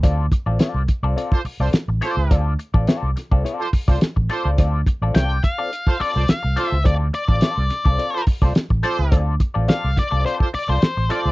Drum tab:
HH |x-x-x-x-x-o-x-x-|x-x-x-x-x-o-x-x-|x-x-x-x-x-o-x-x-|x-x-x-x-x-o-x-x-|
SD |----o-------o-o-|----o-o-----o-o-|----o-------o-o-|----o-o-----o-o-|
BD |o-o---o--o------|o--o---o--oo-o--|o-o---o--o------|o--o---o--oo-o--|

HH |x-x-x-x-x-o-x-x-|
SD |----o-o-----o-o-|
BD |o-o---o--o------|